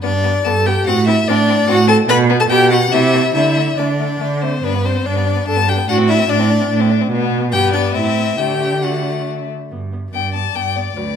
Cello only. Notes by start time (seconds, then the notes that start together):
0.03 G2
0.45 G2
0.87 A2
1.27 A2
1.68 A2
2.09 B2
2.49 B2
2.91 C3
3.35 D3
3.78 D3
4.21 D3
4.64 G2
5.06 G2
5.48 G2
5.88 A2
6.29 A2
6.70 A2
7.11 B2
7.52 G2
7.95 A2
8.38 D3
9.71 G2
10.13 G2
10.55 G2
10.96 D2